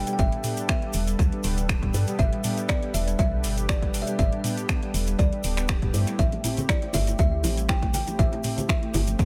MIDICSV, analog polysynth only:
0, 0, Header, 1, 2, 480
1, 0, Start_track
1, 0, Tempo, 500000
1, 183, Time_signature, 4, 2, 24, 8
1, 8880, End_track
2, 0, Start_track
2, 0, Title_t, "Analog polysynth"
2, 0, Program_c, 0, 90
2, 72, Note_on_c, 0, 62, 83
2, 72, Note_on_c, 0, 67, 97
2, 73, Note_on_c, 0, 55, 89
2, 73, Note_on_c, 0, 59, 84
2, 396, Note_off_c, 0, 62, 0
2, 397, Note_off_c, 0, 55, 0
2, 397, Note_off_c, 0, 59, 0
2, 397, Note_off_c, 0, 67, 0
2, 423, Note_on_c, 0, 55, 95
2, 423, Note_on_c, 0, 59, 82
2, 423, Note_on_c, 0, 62, 83
2, 423, Note_on_c, 0, 67, 101
2, 761, Note_off_c, 0, 55, 0
2, 761, Note_off_c, 0, 59, 0
2, 761, Note_off_c, 0, 62, 0
2, 761, Note_off_c, 0, 67, 0
2, 792, Note_on_c, 0, 55, 91
2, 792, Note_on_c, 0, 59, 85
2, 792, Note_on_c, 0, 67, 102
2, 793, Note_on_c, 0, 62, 83
2, 887, Note_off_c, 0, 55, 0
2, 887, Note_off_c, 0, 59, 0
2, 887, Note_off_c, 0, 67, 0
2, 888, Note_off_c, 0, 62, 0
2, 1272, Note_on_c, 0, 59, 74
2, 1273, Note_on_c, 0, 55, 78
2, 1273, Note_on_c, 0, 62, 73
2, 1273, Note_on_c, 0, 67, 86
2, 1597, Note_off_c, 0, 55, 0
2, 1597, Note_off_c, 0, 59, 0
2, 1597, Note_off_c, 0, 62, 0
2, 1597, Note_off_c, 0, 67, 0
2, 1622, Note_on_c, 0, 55, 74
2, 1622, Note_on_c, 0, 62, 68
2, 1622, Note_on_c, 0, 67, 83
2, 1960, Note_off_c, 0, 55, 0
2, 1961, Note_off_c, 0, 62, 0
2, 1961, Note_off_c, 0, 67, 0
2, 1991, Note_on_c, 0, 55, 88
2, 1991, Note_on_c, 0, 59, 83
2, 1991, Note_on_c, 0, 62, 83
2, 1991, Note_on_c, 0, 67, 99
2, 2316, Note_off_c, 0, 55, 0
2, 2316, Note_off_c, 0, 59, 0
2, 2316, Note_off_c, 0, 62, 0
2, 2316, Note_off_c, 0, 67, 0
2, 2342, Note_on_c, 0, 55, 96
2, 2342, Note_on_c, 0, 62, 86
2, 2343, Note_on_c, 0, 59, 85
2, 2343, Note_on_c, 0, 67, 100
2, 2681, Note_off_c, 0, 55, 0
2, 2681, Note_off_c, 0, 59, 0
2, 2681, Note_off_c, 0, 62, 0
2, 2681, Note_off_c, 0, 67, 0
2, 2711, Note_on_c, 0, 59, 83
2, 2711, Note_on_c, 0, 62, 82
2, 2712, Note_on_c, 0, 55, 89
2, 2712, Note_on_c, 0, 67, 101
2, 2807, Note_off_c, 0, 55, 0
2, 2807, Note_off_c, 0, 59, 0
2, 2807, Note_off_c, 0, 62, 0
2, 2807, Note_off_c, 0, 67, 0
2, 3191, Note_on_c, 0, 55, 77
2, 3191, Note_on_c, 0, 59, 72
2, 3191, Note_on_c, 0, 62, 71
2, 3191, Note_on_c, 0, 67, 85
2, 3516, Note_off_c, 0, 55, 0
2, 3516, Note_off_c, 0, 59, 0
2, 3516, Note_off_c, 0, 62, 0
2, 3516, Note_off_c, 0, 67, 0
2, 3912, Note_on_c, 0, 55, 89
2, 3912, Note_on_c, 0, 59, 79
2, 3912, Note_on_c, 0, 62, 81
2, 3912, Note_on_c, 0, 67, 100
2, 4237, Note_off_c, 0, 55, 0
2, 4237, Note_off_c, 0, 59, 0
2, 4237, Note_off_c, 0, 62, 0
2, 4237, Note_off_c, 0, 67, 0
2, 4263, Note_on_c, 0, 55, 91
2, 4263, Note_on_c, 0, 59, 83
2, 4263, Note_on_c, 0, 62, 85
2, 4263, Note_on_c, 0, 67, 105
2, 4601, Note_off_c, 0, 55, 0
2, 4601, Note_off_c, 0, 59, 0
2, 4601, Note_off_c, 0, 62, 0
2, 4601, Note_off_c, 0, 67, 0
2, 4631, Note_on_c, 0, 55, 90
2, 4631, Note_on_c, 0, 62, 84
2, 4632, Note_on_c, 0, 59, 83
2, 4632, Note_on_c, 0, 67, 100
2, 4727, Note_off_c, 0, 55, 0
2, 4727, Note_off_c, 0, 59, 0
2, 4727, Note_off_c, 0, 62, 0
2, 4727, Note_off_c, 0, 67, 0
2, 5110, Note_on_c, 0, 55, 81
2, 5110, Note_on_c, 0, 59, 70
2, 5110, Note_on_c, 0, 62, 72
2, 5110, Note_on_c, 0, 67, 85
2, 5200, Note_off_c, 0, 55, 0
2, 5200, Note_off_c, 0, 59, 0
2, 5200, Note_off_c, 0, 62, 0
2, 5200, Note_off_c, 0, 67, 0
2, 5222, Note_on_c, 0, 55, 81
2, 5222, Note_on_c, 0, 62, 73
2, 5223, Note_on_c, 0, 59, 75
2, 5223, Note_on_c, 0, 67, 88
2, 5561, Note_off_c, 0, 55, 0
2, 5561, Note_off_c, 0, 59, 0
2, 5561, Note_off_c, 0, 62, 0
2, 5561, Note_off_c, 0, 67, 0
2, 5593, Note_on_c, 0, 59, 81
2, 5594, Note_on_c, 0, 55, 89
2, 5594, Note_on_c, 0, 62, 80
2, 5594, Note_on_c, 0, 67, 94
2, 5677, Note_off_c, 0, 59, 0
2, 5678, Note_off_c, 0, 55, 0
2, 5678, Note_off_c, 0, 62, 0
2, 5678, Note_off_c, 0, 67, 0
2, 5705, Note_on_c, 0, 57, 81
2, 5705, Note_on_c, 0, 60, 78
2, 5705, Note_on_c, 0, 64, 78
2, 5705, Note_on_c, 0, 67, 93
2, 6157, Note_off_c, 0, 57, 0
2, 6157, Note_off_c, 0, 67, 0
2, 6158, Note_off_c, 0, 60, 0
2, 6158, Note_off_c, 0, 64, 0
2, 6184, Note_on_c, 0, 57, 91
2, 6184, Note_on_c, 0, 60, 87
2, 6184, Note_on_c, 0, 64, 82
2, 6184, Note_on_c, 0, 67, 101
2, 6521, Note_off_c, 0, 60, 0
2, 6521, Note_off_c, 0, 64, 0
2, 6522, Note_off_c, 0, 57, 0
2, 6522, Note_off_c, 0, 67, 0
2, 6552, Note_on_c, 0, 57, 94
2, 6552, Note_on_c, 0, 60, 84
2, 6552, Note_on_c, 0, 64, 82
2, 6552, Note_on_c, 0, 67, 102
2, 6647, Note_off_c, 0, 57, 0
2, 6647, Note_off_c, 0, 60, 0
2, 6647, Note_off_c, 0, 64, 0
2, 6647, Note_off_c, 0, 67, 0
2, 7030, Note_on_c, 0, 57, 79
2, 7031, Note_on_c, 0, 64, 73
2, 7031, Note_on_c, 0, 67, 85
2, 7032, Note_on_c, 0, 60, 73
2, 7356, Note_off_c, 0, 57, 0
2, 7356, Note_off_c, 0, 64, 0
2, 7356, Note_off_c, 0, 67, 0
2, 7357, Note_off_c, 0, 60, 0
2, 7384, Note_on_c, 0, 57, 75
2, 7384, Note_on_c, 0, 60, 68
2, 7384, Note_on_c, 0, 64, 66
2, 7384, Note_on_c, 0, 67, 82
2, 7721, Note_off_c, 0, 67, 0
2, 7722, Note_off_c, 0, 57, 0
2, 7722, Note_off_c, 0, 60, 0
2, 7722, Note_off_c, 0, 64, 0
2, 7753, Note_on_c, 0, 57, 90
2, 7754, Note_on_c, 0, 60, 83
2, 7754, Note_on_c, 0, 64, 84
2, 7754, Note_on_c, 0, 67, 101
2, 8077, Note_off_c, 0, 57, 0
2, 8078, Note_off_c, 0, 60, 0
2, 8078, Note_off_c, 0, 64, 0
2, 8078, Note_off_c, 0, 67, 0
2, 8106, Note_on_c, 0, 57, 93
2, 8106, Note_on_c, 0, 60, 84
2, 8106, Note_on_c, 0, 64, 84
2, 8106, Note_on_c, 0, 67, 101
2, 8443, Note_off_c, 0, 57, 0
2, 8443, Note_off_c, 0, 60, 0
2, 8443, Note_off_c, 0, 64, 0
2, 8443, Note_off_c, 0, 67, 0
2, 8472, Note_on_c, 0, 60, 86
2, 8472, Note_on_c, 0, 64, 86
2, 8473, Note_on_c, 0, 57, 92
2, 8474, Note_on_c, 0, 67, 98
2, 8567, Note_off_c, 0, 60, 0
2, 8567, Note_off_c, 0, 64, 0
2, 8568, Note_off_c, 0, 57, 0
2, 8568, Note_off_c, 0, 67, 0
2, 8880, End_track
0, 0, End_of_file